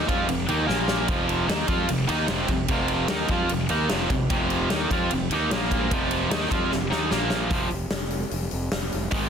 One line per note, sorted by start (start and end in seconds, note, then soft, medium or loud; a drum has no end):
0.08 0.27 F2 medium
0.08 0.28 F3 medium
0.08 0.28 C4 medium
0.08 0.28 F4 medium
0.08 kick medium
0.08 ride medium
0.28 0.47 F1 medium
0.28 0.44 F2 medium
0.28 0.44 C3 medium
0.28 ride medium
0.48 0.67 D#2 medium
0.48 0.66 D#3 medium
0.48 0.66 A#3 medium
0.48 0.67 D#4 medium
0.48 ride medium
0.66 1.06 A#1 medium
0.66 1.07 A#2 medium
0.66 1.07 F3 medium
0.66 1.07 A#3 medium
0.66 snare medium
0.88 snare medium
1.08 1.48 F2 medium
1.08 1.47 C3 medium
1.08 1.48 F3 medium
1.08 kick loud
1.08 ride medium
1.29 ride medium
1.48 1.67 D#2 loud
1.48 1.67 D#3 medium
1.48 1.67 A#3 medium
1.48 1.68 D#4 medium
1.48 snare loud
1.48 ride medium
1.67 1.87 F2 medium
1.67 1.87 F3 medium
1.67 1.88 C4 medium
1.67 1.88 F4 medium
1.67 kick medium
1.67 ride medium
1.87 2.08 F1 medium
1.87 2.04 F2 medium
1.87 2.04 C3 medium
1.87 ride medium
2.07 2.27 D#2 medium
2.07 2.27 D#3 medium
2.07 2.28 A#3 medium
2.07 2.28 D#4 loud
2.07 ride medium
2.28 2.48 F1 medium
2.28 2.48 F2 medium
2.28 2.48 C3 medium
2.28 2.48 F3 loud
2.28 snare loud
2.28 ride medium
2.48 2.67 F1 medium
2.48 2.66 F2 medium
2.48 2.66 C3 medium
2.48 kick medium
2.48 ride medium
2.68 3.06 F1 medium
2.68 3.09 F2 medium
2.68 3.09 C3 medium
2.68 3.09 F3 medium
2.68 kick loud
2.68 ride loud
2.88 ride medium
3.08 3.28 D#2 medium
3.08 3.29 D#3 medium
3.08 3.29 A#3 medium
3.08 3.30 D#4 medium
3.08 snare loud
3.08 ride loud
3.28 3.48 F2 medium
3.28 3.49 F3 medium
3.28 3.50 C4 medium
3.28 3.50 F4 medium
3.28 kick medium
3.28 ride medium
3.49 3.68 F1 medium
3.49 3.66 F2 medium
3.49 3.66 C3 medium
3.49 ride medium
3.69 3.89 D#2 medium
3.69 3.89 D#3 medium
3.69 3.89 A#3 medium
3.69 3.90 D#4 medium
3.69 ride medium
3.89 4.09 F1 medium
3.89 4.09 F2 medium
3.89 4.09 C3 medium
3.89 4.09 F3 loud
3.89 snare loud
3.89 ride medium
4.10 4.28 F1 medium
4.10 4.26 F2 medium
4.10 4.27 C3 medium
4.10 kick medium
4.10 ride medium
4.30 4.67 F1 medium
4.30 4.69 F2 medium
4.30 4.70 C3 medium
4.30 4.70 F3 medium
4.30 kick loud
4.30 ride medium
4.50 ride medium
4.70 4.89 D#2 medium
4.70 4.90 D#3 medium
4.70 4.90 A#3 medium
4.70 4.90 D#4 medium
4.70 snare loud
4.70 ride medium
4.91 5.09 F2 medium
4.91 5.10 F3 medium
4.91 5.10 C4 medium
4.91 5.10 F4 medium
4.91 kick medium
4.91 ride medium
5.11 5.29 F1 medium
5.11 5.27 F2 medium
5.11 5.27 C3 medium
5.11 ride medium
5.30 5.49 D#2 medium
5.30 5.51 D#3 medium
5.30 5.51 A#3 medium
5.30 5.51 D#4 loud
5.30 ride medium
5.51 5.88 A#1 medium
5.51 5.90 A#2 medium
5.51 5.91 F3 medium
5.51 5.91 A#3 loud
5.51 snare loud
5.51 ride loud
5.71 kick medium
5.71 ride medium
5.91 6.28 F1 loud
5.91 6.31 F2 medium
5.91 6.30 C3 medium
5.91 6.31 F3 medium
5.91 kick loud
5.91 ride medium
6.11 ride medium
6.30 6.49 D#2 medium
6.30 6.50 D#3 medium
6.30 6.51 A#3 medium
6.30 6.51 D#4 loud
6.30 snare loud
6.30 ride loud
6.51 6.70 F2 medium
6.51 6.70 F3 medium
6.51 6.71 C4 medium
6.51 6.71 F4 medium
6.51 kick medium
6.51 ride medium
6.70 6.90 F1 medium
6.70 6.87 F2 medium
6.70 6.87 C3 medium
6.70 snare medium
6.90 7.10 D#2 medium
6.90 7.10 D#3 medium
6.90 7.10 A#3 medium
6.90 7.11 D#4 medium
6.90 snare medium
7.10 7.49 A#1 medium
7.10 7.50 A#2 medium
7.10 7.50 F3 medium
7.10 7.51 A#3 medium
7.10 snare medium
7.30 snare medium
7.50 7.67 F1 medium
7.50 7.67 F2 medium
7.50 7.67 C3 medium
7.50 7.68 F3 medium
7.50 kick loud
7.50 open hi-hat medium
7.70 7.88 F1 medium
7.70 open hi-hat soft
7.90 8.23 F1 medium
7.90 snare loud
7.90 open hi-hat medium
8.10 open hi-hat soft
8.31 8.48 F1 medium
8.31 open hi-hat medium
8.51 8.68 F1 medium
8.51 open hi-hat soft
8.71 8.89 F1 medium
8.71 snare loud
8.71 open hi-hat medium
8.92 9.09 F1 medium
8.92 open hi-hat soft
9.11 9.28 G#2 medium
9.11 9.28 D#3 medium
9.11 9.29 G#3 medium
9.11 kick medium
9.11 open hi-hat medium